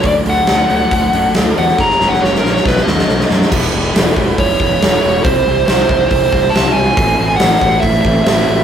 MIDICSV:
0, 0, Header, 1, 6, 480
1, 0, Start_track
1, 0, Tempo, 432277
1, 60, Time_signature, 4, 2, 24, 8
1, 9593, End_track
2, 0, Start_track
2, 0, Title_t, "Lead electric guitar"
2, 0, Program_c, 0, 29
2, 77, Note_on_c, 0, 74, 81
2, 139, Note_off_c, 0, 74, 0
2, 329, Note_on_c, 0, 78, 89
2, 1475, Note_off_c, 0, 78, 0
2, 1762, Note_on_c, 0, 78, 102
2, 1978, Note_off_c, 0, 78, 0
2, 2005, Note_on_c, 0, 82, 109
2, 2318, Note_on_c, 0, 78, 92
2, 2326, Note_off_c, 0, 82, 0
2, 2458, Note_on_c, 0, 73, 81
2, 2478, Note_off_c, 0, 78, 0
2, 2645, Note_off_c, 0, 73, 0
2, 2645, Note_on_c, 0, 70, 85
2, 2789, Note_off_c, 0, 70, 0
2, 2793, Note_on_c, 0, 73, 79
2, 2967, Note_off_c, 0, 73, 0
2, 2967, Note_on_c, 0, 71, 92
2, 3118, Note_off_c, 0, 71, 0
2, 3134, Note_on_c, 0, 75, 90
2, 3569, Note_off_c, 0, 75, 0
2, 4879, Note_on_c, 0, 73, 95
2, 5789, Note_off_c, 0, 73, 0
2, 5815, Note_on_c, 0, 72, 94
2, 6276, Note_off_c, 0, 72, 0
2, 6289, Note_on_c, 0, 72, 97
2, 6753, Note_off_c, 0, 72, 0
2, 6767, Note_on_c, 0, 72, 105
2, 7219, Note_on_c, 0, 81, 116
2, 7271, Note_off_c, 0, 72, 0
2, 7467, Note_off_c, 0, 81, 0
2, 7471, Note_on_c, 0, 80, 120
2, 8170, Note_off_c, 0, 80, 0
2, 8175, Note_on_c, 0, 78, 101
2, 8644, Note_off_c, 0, 78, 0
2, 8665, Note_on_c, 0, 76, 111
2, 8882, Note_off_c, 0, 76, 0
2, 8895, Note_on_c, 0, 76, 99
2, 9139, Note_off_c, 0, 76, 0
2, 9152, Note_on_c, 0, 76, 112
2, 9593, Note_off_c, 0, 76, 0
2, 9593, End_track
3, 0, Start_track
3, 0, Title_t, "String machine"
3, 0, Program_c, 1, 50
3, 3874, Note_on_c, 1, 76, 69
3, 3884, Note_on_c, 1, 83, 84
3, 3895, Note_on_c, 1, 68, 81
3, 5796, Note_off_c, 1, 83, 0
3, 5802, Note_off_c, 1, 68, 0
3, 5849, Note_on_c, 1, 84, 86
3, 5851, Note_on_c, 1, 67, 81
3, 7714, Note_on_c, 1, 69, 76
3, 7738, Note_off_c, 1, 67, 0
3, 9593, Note_off_c, 1, 69, 0
3, 9593, Note_off_c, 1, 76, 0
3, 9593, Note_off_c, 1, 84, 0
3, 9593, End_track
4, 0, Start_track
4, 0, Title_t, "Overdriven electric guitar"
4, 0, Program_c, 2, 29
4, 45, Note_on_c, 2, 50, 100
4, 56, Note_on_c, 2, 57, 108
4, 57, Note_on_c, 2, 54, 113
4, 64, Note_on_c, 2, 62, 106
4, 274, Note_off_c, 2, 50, 0
4, 277, Note_off_c, 2, 57, 0
4, 284, Note_off_c, 2, 62, 0
4, 288, Note_on_c, 2, 50, 89
4, 289, Note_off_c, 2, 54, 0
4, 290, Note_on_c, 2, 57, 106
4, 293, Note_on_c, 2, 54, 98
4, 297, Note_on_c, 2, 62, 97
4, 521, Note_off_c, 2, 50, 0
4, 530, Note_off_c, 2, 54, 0
4, 532, Note_off_c, 2, 57, 0
4, 533, Note_off_c, 2, 62, 0
4, 534, Note_on_c, 2, 50, 98
4, 534, Note_on_c, 2, 54, 80
4, 545, Note_on_c, 2, 57, 79
4, 547, Note_on_c, 2, 62, 104
4, 767, Note_off_c, 2, 50, 0
4, 772, Note_off_c, 2, 62, 0
4, 775, Note_off_c, 2, 57, 0
4, 777, Note_off_c, 2, 54, 0
4, 780, Note_on_c, 2, 50, 85
4, 781, Note_on_c, 2, 54, 94
4, 785, Note_on_c, 2, 62, 97
4, 788, Note_on_c, 2, 57, 87
4, 999, Note_off_c, 2, 50, 0
4, 1004, Note_off_c, 2, 54, 0
4, 1004, Note_off_c, 2, 57, 0
4, 1009, Note_off_c, 2, 62, 0
4, 1012, Note_on_c, 2, 50, 112
4, 1017, Note_on_c, 2, 54, 113
4, 1017, Note_on_c, 2, 57, 127
4, 1023, Note_on_c, 2, 62, 127
4, 1242, Note_off_c, 2, 50, 0
4, 1246, Note_off_c, 2, 54, 0
4, 1254, Note_off_c, 2, 57, 0
4, 1255, Note_on_c, 2, 50, 71
4, 1259, Note_off_c, 2, 62, 0
4, 1260, Note_on_c, 2, 54, 75
4, 1267, Note_on_c, 2, 57, 82
4, 1272, Note_on_c, 2, 62, 88
4, 1490, Note_off_c, 2, 50, 0
4, 1498, Note_off_c, 2, 57, 0
4, 1500, Note_off_c, 2, 54, 0
4, 1504, Note_on_c, 2, 50, 83
4, 1505, Note_off_c, 2, 62, 0
4, 1511, Note_on_c, 2, 57, 95
4, 1513, Note_on_c, 2, 54, 94
4, 1518, Note_on_c, 2, 62, 97
4, 1733, Note_off_c, 2, 50, 0
4, 1742, Note_off_c, 2, 54, 0
4, 1746, Note_on_c, 2, 50, 89
4, 1748, Note_off_c, 2, 57, 0
4, 1750, Note_off_c, 2, 62, 0
4, 1755, Note_on_c, 2, 54, 95
4, 1761, Note_on_c, 2, 57, 90
4, 1763, Note_on_c, 2, 62, 99
4, 1969, Note_on_c, 2, 42, 101
4, 1970, Note_off_c, 2, 54, 0
4, 1972, Note_off_c, 2, 50, 0
4, 1978, Note_on_c, 2, 49, 116
4, 1980, Note_off_c, 2, 57, 0
4, 1981, Note_off_c, 2, 62, 0
4, 1983, Note_on_c, 2, 54, 108
4, 1987, Note_on_c, 2, 58, 117
4, 1993, Note_on_c, 2, 61, 112
4, 2207, Note_off_c, 2, 42, 0
4, 2213, Note_off_c, 2, 49, 0
4, 2218, Note_off_c, 2, 58, 0
4, 2220, Note_on_c, 2, 42, 84
4, 2222, Note_off_c, 2, 54, 0
4, 2226, Note_on_c, 2, 49, 96
4, 2231, Note_off_c, 2, 61, 0
4, 2232, Note_on_c, 2, 58, 95
4, 2235, Note_on_c, 2, 54, 89
4, 2244, Note_on_c, 2, 61, 105
4, 2453, Note_off_c, 2, 42, 0
4, 2456, Note_off_c, 2, 49, 0
4, 2465, Note_off_c, 2, 58, 0
4, 2466, Note_off_c, 2, 54, 0
4, 2467, Note_on_c, 2, 42, 90
4, 2470, Note_on_c, 2, 49, 89
4, 2476, Note_off_c, 2, 61, 0
4, 2478, Note_on_c, 2, 58, 99
4, 2480, Note_on_c, 2, 54, 87
4, 2489, Note_on_c, 2, 61, 104
4, 2680, Note_off_c, 2, 42, 0
4, 2693, Note_on_c, 2, 42, 82
4, 2695, Note_off_c, 2, 49, 0
4, 2695, Note_off_c, 2, 54, 0
4, 2698, Note_off_c, 2, 58, 0
4, 2704, Note_off_c, 2, 61, 0
4, 2708, Note_on_c, 2, 49, 96
4, 2708, Note_on_c, 2, 54, 94
4, 2711, Note_on_c, 2, 58, 87
4, 2717, Note_on_c, 2, 61, 93
4, 2927, Note_off_c, 2, 42, 0
4, 2934, Note_off_c, 2, 49, 0
4, 2934, Note_off_c, 2, 54, 0
4, 2935, Note_off_c, 2, 58, 0
4, 2938, Note_off_c, 2, 61, 0
4, 2943, Note_on_c, 2, 47, 98
4, 2947, Note_on_c, 2, 54, 111
4, 2954, Note_on_c, 2, 57, 103
4, 2956, Note_on_c, 2, 63, 117
4, 3174, Note_off_c, 2, 47, 0
4, 3178, Note_off_c, 2, 54, 0
4, 3180, Note_off_c, 2, 57, 0
4, 3188, Note_on_c, 2, 47, 78
4, 3189, Note_off_c, 2, 63, 0
4, 3191, Note_on_c, 2, 54, 85
4, 3194, Note_on_c, 2, 57, 79
4, 3202, Note_on_c, 2, 63, 96
4, 3413, Note_off_c, 2, 47, 0
4, 3418, Note_off_c, 2, 57, 0
4, 3421, Note_off_c, 2, 54, 0
4, 3422, Note_off_c, 2, 63, 0
4, 3427, Note_on_c, 2, 47, 88
4, 3432, Note_on_c, 2, 57, 98
4, 3434, Note_on_c, 2, 54, 94
4, 3435, Note_on_c, 2, 63, 98
4, 3651, Note_off_c, 2, 47, 0
4, 3659, Note_off_c, 2, 57, 0
4, 3662, Note_off_c, 2, 54, 0
4, 3665, Note_on_c, 2, 47, 80
4, 3668, Note_off_c, 2, 63, 0
4, 3672, Note_on_c, 2, 57, 95
4, 3675, Note_on_c, 2, 54, 95
4, 3681, Note_on_c, 2, 63, 91
4, 3891, Note_off_c, 2, 47, 0
4, 3895, Note_on_c, 2, 52, 117
4, 3896, Note_off_c, 2, 57, 0
4, 3898, Note_off_c, 2, 54, 0
4, 3901, Note_off_c, 2, 63, 0
4, 3911, Note_on_c, 2, 56, 94
4, 3920, Note_on_c, 2, 59, 107
4, 3931, Note_on_c, 2, 64, 122
4, 4146, Note_off_c, 2, 64, 0
4, 4150, Note_on_c, 2, 64, 74
4, 4151, Note_off_c, 2, 59, 0
4, 4165, Note_off_c, 2, 56, 0
4, 4165, Note_on_c, 2, 59, 74
4, 4178, Note_on_c, 2, 56, 68
4, 4368, Note_off_c, 2, 56, 0
4, 4370, Note_off_c, 2, 52, 0
4, 4374, Note_on_c, 2, 52, 114
4, 4375, Note_off_c, 2, 59, 0
4, 4382, Note_on_c, 2, 56, 94
4, 4389, Note_on_c, 2, 59, 116
4, 4396, Note_off_c, 2, 64, 0
4, 4400, Note_on_c, 2, 64, 114
4, 4619, Note_off_c, 2, 64, 0
4, 4623, Note_on_c, 2, 64, 88
4, 4626, Note_off_c, 2, 59, 0
4, 4635, Note_off_c, 2, 56, 0
4, 4639, Note_on_c, 2, 59, 82
4, 4649, Note_on_c, 2, 56, 67
4, 5090, Note_off_c, 2, 64, 0
4, 5094, Note_on_c, 2, 64, 65
4, 5096, Note_off_c, 2, 59, 0
4, 5108, Note_off_c, 2, 56, 0
4, 5109, Note_on_c, 2, 59, 55
4, 5121, Note_on_c, 2, 56, 62
4, 5330, Note_off_c, 2, 56, 0
4, 5333, Note_off_c, 2, 52, 0
4, 5338, Note_on_c, 2, 52, 90
4, 5342, Note_off_c, 2, 59, 0
4, 5343, Note_on_c, 2, 56, 91
4, 5355, Note_off_c, 2, 64, 0
4, 5355, Note_on_c, 2, 59, 83
4, 5360, Note_on_c, 2, 64, 92
4, 5811, Note_off_c, 2, 56, 0
4, 5816, Note_on_c, 2, 48, 105
4, 5817, Note_off_c, 2, 59, 0
4, 5826, Note_off_c, 2, 52, 0
4, 5830, Note_on_c, 2, 52, 109
4, 5835, Note_on_c, 2, 55, 103
4, 5840, Note_off_c, 2, 64, 0
4, 5841, Note_on_c, 2, 60, 117
4, 5845, Note_on_c, 2, 64, 122
4, 6062, Note_off_c, 2, 64, 0
4, 6066, Note_on_c, 2, 64, 73
4, 6070, Note_off_c, 2, 60, 0
4, 6075, Note_on_c, 2, 60, 70
4, 6078, Note_off_c, 2, 55, 0
4, 6092, Note_on_c, 2, 55, 62
4, 6287, Note_off_c, 2, 48, 0
4, 6298, Note_off_c, 2, 55, 0
4, 6300, Note_on_c, 2, 48, 105
4, 6305, Note_off_c, 2, 52, 0
4, 6309, Note_on_c, 2, 52, 107
4, 6311, Note_on_c, 2, 55, 114
4, 6314, Note_off_c, 2, 60, 0
4, 6315, Note_off_c, 2, 64, 0
4, 6318, Note_on_c, 2, 60, 108
4, 6320, Note_on_c, 2, 64, 109
4, 6552, Note_off_c, 2, 64, 0
4, 6557, Note_on_c, 2, 64, 86
4, 6569, Note_off_c, 2, 55, 0
4, 6569, Note_off_c, 2, 60, 0
4, 6574, Note_on_c, 2, 60, 76
4, 6582, Note_on_c, 2, 55, 62
4, 6783, Note_off_c, 2, 48, 0
4, 7013, Note_off_c, 2, 64, 0
4, 7026, Note_on_c, 2, 64, 65
4, 7029, Note_off_c, 2, 60, 0
4, 7036, Note_off_c, 2, 55, 0
4, 7042, Note_on_c, 2, 60, 63
4, 7049, Note_on_c, 2, 55, 63
4, 7258, Note_off_c, 2, 52, 0
4, 7259, Note_off_c, 2, 55, 0
4, 7261, Note_off_c, 2, 60, 0
4, 7262, Note_on_c, 2, 52, 74
4, 7269, Note_off_c, 2, 64, 0
4, 7272, Note_on_c, 2, 55, 84
4, 7274, Note_on_c, 2, 60, 78
4, 7282, Note_on_c, 2, 64, 89
4, 7729, Note_off_c, 2, 52, 0
4, 7734, Note_off_c, 2, 55, 0
4, 7735, Note_off_c, 2, 60, 0
4, 7736, Note_on_c, 2, 45, 105
4, 7739, Note_off_c, 2, 64, 0
4, 7741, Note_on_c, 2, 52, 99
4, 7743, Note_on_c, 2, 57, 98
4, 7751, Note_on_c, 2, 60, 117
4, 7757, Note_on_c, 2, 64, 102
4, 7970, Note_off_c, 2, 64, 0
4, 7978, Note_off_c, 2, 60, 0
4, 7983, Note_on_c, 2, 64, 81
4, 7991, Note_on_c, 2, 60, 75
4, 8002, Note_off_c, 2, 57, 0
4, 8006, Note_on_c, 2, 57, 61
4, 8202, Note_off_c, 2, 45, 0
4, 8209, Note_off_c, 2, 52, 0
4, 8215, Note_on_c, 2, 45, 103
4, 8218, Note_off_c, 2, 60, 0
4, 8222, Note_on_c, 2, 52, 115
4, 8225, Note_off_c, 2, 57, 0
4, 8230, Note_off_c, 2, 64, 0
4, 8230, Note_on_c, 2, 57, 95
4, 8232, Note_on_c, 2, 60, 107
4, 8244, Note_on_c, 2, 64, 109
4, 8454, Note_off_c, 2, 64, 0
4, 8461, Note_off_c, 2, 60, 0
4, 8468, Note_on_c, 2, 64, 72
4, 8474, Note_on_c, 2, 60, 72
4, 8485, Note_off_c, 2, 57, 0
4, 8489, Note_on_c, 2, 57, 69
4, 8699, Note_off_c, 2, 45, 0
4, 8703, Note_off_c, 2, 52, 0
4, 8935, Note_off_c, 2, 64, 0
4, 8942, Note_off_c, 2, 60, 0
4, 8949, Note_on_c, 2, 64, 75
4, 8954, Note_off_c, 2, 57, 0
4, 8955, Note_on_c, 2, 60, 71
4, 8967, Note_on_c, 2, 57, 63
4, 9175, Note_on_c, 2, 52, 80
4, 9182, Note_off_c, 2, 57, 0
4, 9184, Note_off_c, 2, 60, 0
4, 9193, Note_off_c, 2, 64, 0
4, 9195, Note_on_c, 2, 57, 80
4, 9198, Note_on_c, 2, 60, 85
4, 9207, Note_on_c, 2, 64, 89
4, 9593, Note_off_c, 2, 52, 0
4, 9593, Note_off_c, 2, 57, 0
4, 9593, Note_off_c, 2, 60, 0
4, 9593, Note_off_c, 2, 64, 0
4, 9593, End_track
5, 0, Start_track
5, 0, Title_t, "Fingered electric bass"
5, 0, Program_c, 3, 33
5, 41, Note_on_c, 3, 38, 87
5, 203, Note_off_c, 3, 38, 0
5, 285, Note_on_c, 3, 38, 91
5, 445, Note_off_c, 3, 38, 0
5, 526, Note_on_c, 3, 38, 97
5, 686, Note_off_c, 3, 38, 0
5, 774, Note_on_c, 3, 38, 87
5, 932, Note_off_c, 3, 38, 0
5, 1010, Note_on_c, 3, 38, 89
5, 1169, Note_off_c, 3, 38, 0
5, 1260, Note_on_c, 3, 42, 94
5, 1417, Note_off_c, 3, 42, 0
5, 1512, Note_on_c, 3, 38, 89
5, 1665, Note_off_c, 3, 38, 0
5, 1746, Note_on_c, 3, 40, 78
5, 1901, Note_off_c, 3, 40, 0
5, 1983, Note_on_c, 3, 30, 99
5, 2139, Note_off_c, 3, 30, 0
5, 2236, Note_on_c, 3, 30, 98
5, 2388, Note_off_c, 3, 30, 0
5, 2463, Note_on_c, 3, 30, 95
5, 2620, Note_off_c, 3, 30, 0
5, 2705, Note_on_c, 3, 34, 85
5, 2861, Note_off_c, 3, 34, 0
5, 2946, Note_on_c, 3, 35, 95
5, 3102, Note_off_c, 3, 35, 0
5, 3185, Note_on_c, 3, 39, 88
5, 3341, Note_off_c, 3, 39, 0
5, 3426, Note_on_c, 3, 35, 83
5, 3582, Note_off_c, 3, 35, 0
5, 3669, Note_on_c, 3, 42, 76
5, 3824, Note_off_c, 3, 42, 0
5, 3906, Note_on_c, 3, 28, 87
5, 4083, Note_off_c, 3, 28, 0
5, 4150, Note_on_c, 3, 28, 98
5, 4326, Note_off_c, 3, 28, 0
5, 4398, Note_on_c, 3, 28, 99
5, 4570, Note_off_c, 3, 28, 0
5, 4624, Note_on_c, 3, 28, 90
5, 4801, Note_off_c, 3, 28, 0
5, 4862, Note_on_c, 3, 28, 103
5, 5040, Note_off_c, 3, 28, 0
5, 5105, Note_on_c, 3, 28, 90
5, 5282, Note_off_c, 3, 28, 0
5, 5339, Note_on_c, 3, 28, 91
5, 5518, Note_off_c, 3, 28, 0
5, 5590, Note_on_c, 3, 28, 81
5, 5765, Note_off_c, 3, 28, 0
5, 5824, Note_on_c, 3, 36, 90
5, 6001, Note_off_c, 3, 36, 0
5, 6069, Note_on_c, 3, 36, 104
5, 6244, Note_off_c, 3, 36, 0
5, 6314, Note_on_c, 3, 36, 92
5, 6487, Note_off_c, 3, 36, 0
5, 6543, Note_on_c, 3, 36, 92
5, 6720, Note_off_c, 3, 36, 0
5, 6785, Note_on_c, 3, 36, 92
5, 6961, Note_off_c, 3, 36, 0
5, 7025, Note_on_c, 3, 36, 105
5, 7201, Note_off_c, 3, 36, 0
5, 7259, Note_on_c, 3, 36, 90
5, 7437, Note_off_c, 3, 36, 0
5, 7493, Note_on_c, 3, 36, 87
5, 7673, Note_off_c, 3, 36, 0
5, 7740, Note_on_c, 3, 33, 88
5, 7918, Note_off_c, 3, 33, 0
5, 7988, Note_on_c, 3, 33, 92
5, 8162, Note_off_c, 3, 33, 0
5, 8224, Note_on_c, 3, 33, 96
5, 8400, Note_off_c, 3, 33, 0
5, 8459, Note_on_c, 3, 33, 97
5, 8636, Note_off_c, 3, 33, 0
5, 8698, Note_on_c, 3, 33, 98
5, 8876, Note_off_c, 3, 33, 0
5, 8938, Note_on_c, 3, 33, 103
5, 9115, Note_off_c, 3, 33, 0
5, 9176, Note_on_c, 3, 33, 90
5, 9354, Note_off_c, 3, 33, 0
5, 9420, Note_on_c, 3, 33, 75
5, 9593, Note_off_c, 3, 33, 0
5, 9593, End_track
6, 0, Start_track
6, 0, Title_t, "Drums"
6, 37, Note_on_c, 9, 46, 72
6, 42, Note_on_c, 9, 36, 98
6, 148, Note_off_c, 9, 46, 0
6, 153, Note_off_c, 9, 36, 0
6, 288, Note_on_c, 9, 46, 59
6, 399, Note_off_c, 9, 46, 0
6, 523, Note_on_c, 9, 46, 69
6, 527, Note_on_c, 9, 38, 100
6, 634, Note_off_c, 9, 46, 0
6, 638, Note_off_c, 9, 38, 0
6, 775, Note_on_c, 9, 46, 56
6, 886, Note_off_c, 9, 46, 0
6, 1015, Note_on_c, 9, 36, 116
6, 1016, Note_on_c, 9, 46, 93
6, 1126, Note_off_c, 9, 36, 0
6, 1127, Note_off_c, 9, 46, 0
6, 1257, Note_on_c, 9, 46, 59
6, 1368, Note_off_c, 9, 46, 0
6, 1494, Note_on_c, 9, 46, 75
6, 1499, Note_on_c, 9, 38, 107
6, 1605, Note_off_c, 9, 46, 0
6, 1610, Note_off_c, 9, 38, 0
6, 1751, Note_on_c, 9, 46, 55
6, 1862, Note_off_c, 9, 46, 0
6, 1867, Note_on_c, 9, 38, 36
6, 1978, Note_off_c, 9, 38, 0
6, 1982, Note_on_c, 9, 36, 103
6, 1985, Note_on_c, 9, 38, 57
6, 2093, Note_off_c, 9, 36, 0
6, 2096, Note_off_c, 9, 38, 0
6, 2115, Note_on_c, 9, 38, 51
6, 2226, Note_off_c, 9, 38, 0
6, 2230, Note_on_c, 9, 38, 69
6, 2341, Note_off_c, 9, 38, 0
6, 2366, Note_on_c, 9, 38, 59
6, 2477, Note_off_c, 9, 38, 0
6, 2486, Note_on_c, 9, 38, 68
6, 2597, Note_off_c, 9, 38, 0
6, 2611, Note_on_c, 9, 38, 72
6, 2722, Note_off_c, 9, 38, 0
6, 2723, Note_on_c, 9, 38, 70
6, 2834, Note_off_c, 9, 38, 0
6, 2841, Note_on_c, 9, 38, 66
6, 2948, Note_on_c, 9, 36, 111
6, 2952, Note_off_c, 9, 38, 0
6, 2964, Note_on_c, 9, 38, 93
6, 3059, Note_off_c, 9, 36, 0
6, 3073, Note_off_c, 9, 38, 0
6, 3073, Note_on_c, 9, 38, 75
6, 3184, Note_off_c, 9, 38, 0
6, 3191, Note_on_c, 9, 38, 98
6, 3302, Note_off_c, 9, 38, 0
6, 3319, Note_on_c, 9, 38, 87
6, 3430, Note_off_c, 9, 38, 0
6, 3431, Note_on_c, 9, 38, 81
6, 3542, Note_off_c, 9, 38, 0
6, 3556, Note_on_c, 9, 38, 83
6, 3667, Note_off_c, 9, 38, 0
6, 3669, Note_on_c, 9, 38, 99
6, 3780, Note_off_c, 9, 38, 0
6, 3796, Note_on_c, 9, 38, 88
6, 3906, Note_on_c, 9, 36, 113
6, 3907, Note_off_c, 9, 38, 0
6, 3907, Note_on_c, 9, 49, 127
6, 4017, Note_off_c, 9, 36, 0
6, 4018, Note_off_c, 9, 49, 0
6, 4393, Note_on_c, 9, 46, 65
6, 4397, Note_on_c, 9, 38, 113
6, 4504, Note_off_c, 9, 46, 0
6, 4508, Note_off_c, 9, 38, 0
6, 4625, Note_on_c, 9, 36, 86
6, 4736, Note_off_c, 9, 36, 0
6, 4867, Note_on_c, 9, 36, 102
6, 4870, Note_on_c, 9, 46, 74
6, 4978, Note_off_c, 9, 36, 0
6, 4981, Note_off_c, 9, 46, 0
6, 5106, Note_on_c, 9, 36, 86
6, 5217, Note_off_c, 9, 36, 0
6, 5354, Note_on_c, 9, 46, 66
6, 5359, Note_on_c, 9, 38, 104
6, 5465, Note_off_c, 9, 46, 0
6, 5470, Note_off_c, 9, 38, 0
6, 5822, Note_on_c, 9, 46, 67
6, 5827, Note_on_c, 9, 36, 125
6, 5933, Note_off_c, 9, 46, 0
6, 5938, Note_off_c, 9, 36, 0
6, 6303, Note_on_c, 9, 46, 60
6, 6307, Note_on_c, 9, 38, 104
6, 6414, Note_off_c, 9, 46, 0
6, 6418, Note_off_c, 9, 38, 0
6, 6544, Note_on_c, 9, 36, 101
6, 6655, Note_off_c, 9, 36, 0
6, 6783, Note_on_c, 9, 36, 98
6, 6788, Note_on_c, 9, 46, 72
6, 6894, Note_off_c, 9, 36, 0
6, 6899, Note_off_c, 9, 46, 0
6, 7024, Note_on_c, 9, 36, 94
6, 7135, Note_off_c, 9, 36, 0
6, 7277, Note_on_c, 9, 46, 57
6, 7281, Note_on_c, 9, 38, 109
6, 7388, Note_off_c, 9, 46, 0
6, 7392, Note_off_c, 9, 38, 0
6, 7741, Note_on_c, 9, 36, 120
6, 7742, Note_on_c, 9, 46, 59
6, 7852, Note_off_c, 9, 36, 0
6, 7853, Note_off_c, 9, 46, 0
6, 8213, Note_on_c, 9, 46, 66
6, 8217, Note_on_c, 9, 38, 112
6, 8324, Note_off_c, 9, 46, 0
6, 8328, Note_off_c, 9, 38, 0
6, 8455, Note_on_c, 9, 36, 92
6, 8566, Note_off_c, 9, 36, 0
6, 8685, Note_on_c, 9, 46, 71
6, 8694, Note_on_c, 9, 36, 92
6, 8796, Note_off_c, 9, 46, 0
6, 8805, Note_off_c, 9, 36, 0
6, 8936, Note_on_c, 9, 36, 91
6, 9047, Note_off_c, 9, 36, 0
6, 9174, Note_on_c, 9, 46, 68
6, 9178, Note_on_c, 9, 38, 105
6, 9285, Note_off_c, 9, 46, 0
6, 9289, Note_off_c, 9, 38, 0
6, 9593, End_track
0, 0, End_of_file